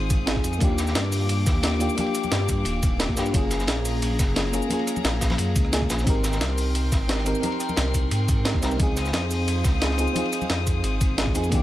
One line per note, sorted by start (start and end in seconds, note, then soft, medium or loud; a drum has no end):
0.00 0.26 C4 loud
0.00 0.27 D#4 medium
0.00 0.28 F4 medium
0.00 0.29 G#4 loud
0.00 0.59 C5 medium
0.00 6.03 F5 medium
0.00 0.59 D#6 medium
0.10 0.26 G#1 loud
0.10 kick loud
0.10 closed hi-hat medium
0.10 ride medium
0.10 cabasa medium
0.26 0.43 G#1 medium
0.26 0.59 C4 medium
0.26 0.59 D#4 medium
0.26 0.60 F4 medium
0.26 0.60 G#4 loud
0.26 snare loud
0.26 closed hi-hat medium
0.26 ride medium
0.36 kick medium
0.36 cross-stick soft
0.44 0.60 F2 loud
0.44 closed hi-hat medium
0.44 ride medium
0.44 cabasa medium
0.53 ride soft
0.53 cabasa soft
0.59 0.94 D#2 loud
0.59 1.60 A#3 loud
0.59 1.61 D4 medium
0.59 1.62 F4 medium
0.59 3.31 G4 medium
0.59 3.31 D6 medium
0.59 kick loud
0.59 closed hi-hat medium
0.59 ride medium
0.59 high conga medium
0.64 1.63 G4 loud
0.78 cross-stick soft
0.78 snare medium
0.78 closed hi-hat medium
0.78 ride medium
0.78 cabasa medium
0.87 snare soft
0.87 cabasa soft
0.95 1.28 G2 medium
0.95 snare loud
0.95 closed hi-hat medium
0.95 ride medium
1.05 ride soft
1.12 closed hi-hat medium
1.12 open hi-hat medium
1.12 cabasa medium
1.29 1.45 G2 medium
1.29 closed hi-hat medium
1.29 ride medium
1.46 1.79 D#2 loud
1.46 kick loud
1.46 snare medium
1.46 closed hi-hat medium
1.46 ride medium
1.46 cabasa medium
1.62 1.78 A#3 medium
1.62 1.78 D4 medium
1.62 1.79 F4 medium
1.62 1.79 G4 medium
1.62 snare loud
1.62 closed hi-hat medium
1.62 ride medium
1.72 cross-stick soft
1.72 snare soft
1.79 1.88 D#2 loud
1.79 1.93 A#3 loud
1.79 1.95 D4 medium
1.79 1.96 F4 medium
1.79 1.96 G4 loud
1.79 cross-stick soft
1.79 closed hi-hat medium
1.79 ride medium
1.79 cabasa medium
1.90 cabasa soft
1.95 2.96 A#3 medium
1.95 2.97 D4 medium
1.95 2.98 F4 medium
1.95 closed hi-hat medium
1.95 ride medium
1.95 high conga medium
2.00 2.99 G4 loud
2.06 ride soft
2.15 cross-stick soft
2.15 closed hi-hat medium
2.15 ride medium
2.15 cabasa medium
2.23 ride soft
2.23 high conga medium
2.23 cabasa soft
2.32 2.64 G2 medium
2.32 snare loud
2.32 closed hi-hat medium
2.32 ride medium
2.49 kick medium
2.49 closed hi-hat medium
2.49 ride medium
2.49 cabasa medium
2.65 3.08 D#1 medium
2.65 closed hi-hat medium
2.65 ride medium
2.83 kick loud
2.83 closed hi-hat medium
2.83 ride medium
2.83 cabasa medium
2.98 3.14 A#3 medium
2.98 3.15 D4 medium
2.98 3.15 F4 medium
2.98 3.16 G4 medium
2.98 snare loud
2.98 closed hi-hat medium
2.98 ride medium
3.09 3.18 A#1 medium
3.09 kick medium
3.09 cross-stick soft
3.16 3.32 G2 loud
3.16 3.30 A#3 loud
3.16 3.32 D4 medium
3.16 3.32 F4 medium
3.16 3.33 G4 loud
3.16 snare loud
3.16 closed hi-hat medium
3.16 ride medium
3.16 cabasa medium
3.26 ride soft
3.26 cabasa soft
3.31 3.67 F#1 loud
3.31 4.33 A#3 loud
3.31 4.34 C#4 medium
3.31 4.35 F4 medium
3.31 6.04 G#4 medium
3.31 6.04 A#5 medium
3.31 kick loud
3.31 closed hi-hat medium
3.31 ride medium
3.31 high conga medium
3.37 4.36 G#4 loud
3.51 cross-stick soft
3.51 snare medium
3.51 closed hi-hat medium
3.51 ride medium
3.51 cabasa medium
3.60 snare medium
3.60 cabasa soft
3.67 4.01 A#1 medium
3.67 snare loud
3.67 closed hi-hat loud
3.67 ride medium
3.77 ride soft
3.85 closed hi-hat medium
3.85 open hi-hat medium
3.85 cabasa medium
4.02 4.18 A#1 medium
4.02 closed hi-hat medium
4.02 ride loud
4.19 4.52 F#1 loud
4.19 kick loud
4.19 snare medium
4.19 closed hi-hat medium
4.19 ride medium
4.19 cabasa medium
4.35 4.51 A#3 medium
4.35 4.51 C#4 medium
4.35 4.52 F4 medium
4.35 4.52 G#4 medium
4.35 snare loud
4.35 closed hi-hat loud
4.35 ride medium
4.45 cross-stick soft
4.45 snare soft
4.52 4.61 F#1 loud
4.52 4.66 A#3 loud
4.52 4.68 C#4 medium
4.52 4.69 F4 medium
4.52 4.69 G#4 loud
4.52 cross-stick soft
4.52 closed hi-hat medium
4.52 ride medium
4.52 cabasa medium
4.62 cabasa soft
4.68 5.69 A#3 loud
4.68 5.70 C#4 medium
4.68 5.71 F4 medium
4.68 closed hi-hat medium
4.68 ride medium
4.68 high conga medium
4.73 5.72 G#4 loud
4.79 ride soft
4.87 cross-stick soft
4.87 closed hi-hat medium
4.87 ride medium
4.87 cabasa medium
4.96 ride soft
4.96 high conga medium
4.96 cabasa soft
5.04 5.37 A#1 medium
5.04 snare loud
5.04 closed hi-hat loud
5.04 ride medium
5.21 kick medium
5.21 snare loud
5.21 closed hi-hat medium
5.21 ride medium
5.21 cabasa medium
5.30 snare loud
5.30 ride medium
5.30 high conga medium
5.38 5.55 F#2 medium
5.38 closed hi-hat medium
5.38 ride medium
5.56 5.71 C#2 loud
5.56 kick loud
5.56 closed hi-hat medium
5.56 ride medium
5.56 cabasa medium
5.65 cross-stick soft
5.71 5.88 C#2 medium
5.71 6.04 A#3 medium
5.71 6.05 C#4 medium
5.71 6.05 F4 medium
5.71 6.06 G#4 loud
5.71 snare loud
5.71 closed hi-hat loud
5.71 ride medium
5.71 cabasa soft
5.82 kick medium
5.82 cross-stick soft
5.90 6.05 A#1 loud
5.90 snare loud
5.90 closed hi-hat medium
5.90 ride medium
5.90 cabasa medium
5.99 snare soft
5.99 cabasa soft
6.04 6.40 G#1 loud
6.04 7.06 C4 medium
6.04 7.07 D#4 medium
6.04 7.08 G4 medium
6.04 8.77 A#4 medium
6.04 8.77 G5 medium
6.04 8.77 C6 medium
6.04 kick loud
6.04 closed hi-hat loud
6.04 ride medium
6.04 high conga medium
6.10 7.08 A#4 loud
6.23 cross-stick soft
6.23 snare medium
6.23 closed hi-hat medium
6.23 ride medium
6.23 cabasa medium
6.32 snare medium
6.32 cabasa soft
6.41 6.74 C2 medium
6.41 snare loud
6.41 closed hi-hat loud
6.41 ride medium
6.50 ride soft
6.58 closed hi-hat medium
6.58 open hi-hat medium
6.58 cabasa medium
6.75 6.90 C2 medium
6.75 closed hi-hat loud
6.75 ride medium
6.92 7.25 G#1 loud
6.92 kick loud
6.92 snare medium
6.92 closed hi-hat medium
6.92 ride medium
6.92 cabasa medium
7.08 7.23 C4 medium
7.08 7.24 D#4 medium
7.08 7.24 G4 medium
7.08 7.25 A#4 medium
7.08 snare loud
7.08 closed hi-hat loud
7.08 ride medium
7.18 cross-stick soft
7.18 snare soft
7.25 7.34 G#1 loud
7.25 7.39 C4 loud
7.25 7.41 D#4 medium
7.25 7.41 G4 medium
7.25 7.42 A#4 loud
7.25 cross-stick soft
7.25 closed hi-hat medium
7.25 ride medium
7.25 cabasa medium
7.35 cabasa soft
7.40 8.42 C4 loud
7.40 8.43 D#4 medium
7.40 8.44 G4 medium
7.40 closed hi-hat medium
7.40 ride medium
7.40 high conga medium
7.46 8.45 A#4 loud
7.52 ride soft
7.60 cross-stick soft
7.60 closed hi-hat medium
7.60 ride medium
7.60 cabasa medium
7.69 ride soft
7.69 high conga medium
7.69 cabasa soft
7.77 8.10 C2 medium
7.77 snare loud
7.77 closed hi-hat loud
7.77 ride medium
7.94 kick medium
7.94 closed hi-hat medium
7.94 ride medium
7.94 cabasa medium
8.11 8.54 G#2 medium
8.11 closed hi-hat medium
8.11 ride loud
8.28 kick loud
8.28 closed hi-hat medium
8.28 ride medium
8.28 cabasa medium
8.44 8.60 C4 medium
8.44 8.60 D#4 medium
8.44 8.61 G4 medium
8.44 8.61 A#4 medium
8.44 snare loud
8.44 closed hi-hat loud
8.44 ride medium
8.54 8.64 D#2 medium
8.54 kick medium
8.54 cross-stick soft
8.61 8.78 C2 loud
8.61 8.76 C4 medium
8.61 8.77 D#4 medium
8.61 8.78 G4 medium
8.61 8.78 A#4 loud
8.61 snare loud
8.61 closed hi-hat medium
8.61 ride medium
8.61 cabasa medium
8.71 ride soft
8.71 cabasa soft
8.77 9.12 C#2 loud
8.77 9.78 C4 loud
8.77 9.79 D#4 medium
8.77 9.80 F4 medium
8.77 11.50 C5 medium
8.77 11.50 F5 medium
8.77 11.50 D#6 medium
8.77 kick loud
8.77 closed hi-hat medium
8.77 ride medium
8.77 high conga medium
8.83 9.81 G#4 loud
8.96 cross-stick soft
8.96 snare medium
8.96 closed hi-hat medium
8.96 ride medium
8.96 cabasa medium
9.06 snare soft
9.06 cabasa soft
9.13 9.46 F2 medium
9.13 snare loud
9.13 closed hi-hat medium
9.13 ride medium
9.22 ride soft
9.31 closed hi-hat medium
9.31 open hi-hat medium
9.31 cabasa medium
9.48 9.63 F2 medium
9.48 closed hi-hat medium
9.48 ride loud
9.64 9.97 C#2 loud
9.64 kick loud
9.64 snare soft
9.64 closed hi-hat medium
9.64 ride medium
9.64 cabasa medium
9.80 9.96 C4 medium
9.80 9.97 D#4 medium
9.80 9.97 F4 medium
9.80 9.98 G#4 medium
9.80 snare loud
9.80 closed hi-hat medium
9.80 ride loud
9.91 cross-stick soft
9.91 snare soft
9.97 10.07 C#2 loud
9.97 10.12 C4 loud
9.97 10.13 D#4 medium
9.97 10.14 F4 medium
9.97 10.15 G#4 loud
9.97 cross-stick soft
9.97 closed hi-hat medium
9.97 ride medium
9.97 cabasa medium
10.08 cabasa soft
10.13 11.15 C4 loud
10.13 11.16 D#4 medium
10.13 11.17 F4 medium
10.13 closed hi-hat medium
10.13 ride medium
10.13 high conga medium
10.19 11.18 G#4 loud
10.25 ride soft
10.33 cross-stick soft
10.33 closed hi-hat medium
10.33 ride medium
10.33 cabasa medium
10.41 ride soft
10.41 high conga medium
10.41 cabasa soft
10.50 10.83 F2 medium
10.50 snare loud
10.50 closed hi-hat medium
10.50 ride medium
10.67 kick medium
10.67 closed hi-hat medium
10.67 ride medium
10.67 cabasa medium
10.84 11.26 G#1 medium
10.84 closed hi-hat medium
10.84 ride medium
11.01 kick loud
11.01 closed hi-hat medium
11.01 ride medium
11.01 cabasa medium
11.17 11.32 C4 medium
11.17 11.33 D#4 medium
11.17 11.33 F4 medium
11.17 11.34 G#4 medium
11.17 snare loud
11.17 closed hi-hat medium
11.17 ride medium
11.27 11.37 G#1 medium
11.27 kick medium
11.27 cross-stick soft
11.34 11.51 F2 loud
11.34 11.50 C4 loud
11.34 11.50 D#4 medium
11.34 11.50 F4 medium
11.34 11.51 G#4 loud
11.34 closed hi-hat medium
11.34 ride medium
11.34 cabasa medium
11.43 ride soft
11.43 cabasa soft
11.49 11.63 D#2 loud
11.49 11.63 A#3 loud
11.49 11.63 D4 medium
11.49 11.63 F4 medium
11.49 11.63 G4 medium
11.49 11.63 F5 medium
11.49 11.63 D6 medium
11.49 kick loud
11.49 closed hi-hat medium
11.49 ride medium
11.49 high conga medium
11.55 11.63 G4 loud